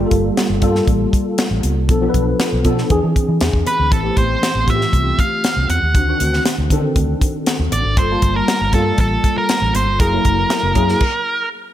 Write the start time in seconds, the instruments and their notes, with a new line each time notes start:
0.00 tine electric piano G3 A#3 F4
0.06 tine electric piano A4
0.11 fingered electric bass G1, kick, closed hi-hat
0.37 snare, closed hi-hat
0.50 fingered electric bass G1
0.61 fingered electric bass G2, tine electric piano G3 A#3 F4 A4, kick, closed hi-hat
0.75 snare
0.87 fingered electric bass A1, kick, closed hi-hat
1.13 kick, closed hi-hat
1.38 snare, closed hi-hat
1.51 fingered electric bass A1
1.63 fingered electric bass C#2, closed hi-hat
1.77 fingered electric bass C2
1.89 fingered electric bass B1, tine electric piano F3 B3 D4 A4, kick, closed hi-hat
2.01 tine electric piano F3 B3 D4 A4
2.09 tine electric piano B4
2.14 fingered electric bass B1, kick, closed hi-hat
2.40 snare, closed hi-hat
2.53 fingered electric bass B1
2.64 fingered electric bass B2, tine electric piano F3 B3 D4 A4, kick, closed hi-hat
2.78 snare
2.90 fingered electric bass E2, tine electric piano E3 C4 D4 G#4, kick, closed hi-hat
3.04 fingered electric bass E3
3.16 kick, closed hi-hat
3.29 fingered electric bass E3
3.41 fingered electric bass E2, snare, closed hi-hat
3.53 fingered electric bass E2, kick
3.67 lead electric guitar B4, closed hi-hat
3.79 fingered electric bass D2
3.91 fingered electric bass A1, tine electric piano E3 A3 C4 G4, lead electric guitar A4, kick, closed hi-hat
4.03 tine electric piano E3 A3 B3 G4
4.10 tine electric piano C4
4.17 fingered electric bass A1, lead electric guitar C5, kick, closed hi-hat
4.43 snare, closed hi-hat
4.55 fingered electric bass A1
4.67 fingered electric bass A2, tine electric piano E3 A3 C4 F4, lead electric guitar E5, kick, closed hi-hat
4.75 tine electric piano G4
4.81 snare
4.93 fingered electric bass C2, kick, closed hi-hat
5.19 lead electric guitar F5, kick, closed hi-hat
5.44 snare, closed hi-hat
5.57 fingered electric bass C2
5.69 fingered electric bass E2, lead electric guitar F#5, closed hi-hat
5.82 fingered electric bass D#2
5.94 fingered electric bass D2, tine electric piano D#3 C4 D4 F#4, kick, closed hi-hat
6.08 tine electric piano D#3 C4 D4 F#4
6.20 fingered electric bass D2, closed hi-hat
6.33 snare
6.46 snare, closed hi-hat
6.58 fingered electric bass D2
6.70 fingered electric bass D3, tine electric piano D#3 C4 D4 A4, kick, closed hi-hat
6.96 fingered electric bass D2, kick, closed hi-hat
7.21 kick, closed hi-hat
7.46 snare, closed hi-hat
7.59 fingered electric bass D#2
7.72 fingered electric bass A1, lead electric guitar D5, closed hi-hat
7.84 fingered electric bass G#1
7.97 fingered electric bass G1, tine electric piano G3 A#3 F4 A4, lead electric guitar C5, kick, closed hi-hat
8.10 tine electric piano G3 A#3 F4 A5
8.22 fingered electric bass G1, kick, closed hi-hat
8.36 lead electric guitar A#4
8.48 snare, closed hi-hat
8.61 fingered electric bass G1
8.73 fingered electric bass G2, tine electric piano G3 A#3 F4 A4, lead electric guitar A4, kick, closed hi-hat
8.98 fingered electric bass A1, lead electric guitar A4, kick, closed hi-hat
9.24 kick, closed hi-hat
9.38 lead electric guitar A#4
9.49 snare, closed hi-hat
9.62 fingered electric bass A1
9.75 fingered electric bass G#1, lead electric guitar C5, closed hi-hat
9.87 fingered electric bass G1
9.99 fingered electric bass F#1, tine electric piano F#3 A#3 E4 G#4, lead electric guitar A#4, kick, closed hi-hat
10.12 tine electric piano F#3 A#3 E4
10.19 tine electric piano A#4
10.25 fingered electric bass F#1, kick, closed hi-hat
10.50 snare, closed hi-hat
10.63 fingered electric bass F#1
10.75 fingered electric bass F#2, tine electric piano F#3 A#3 E4 G#4, kick, closed hi-hat
10.89 snare
11.00 kick, crash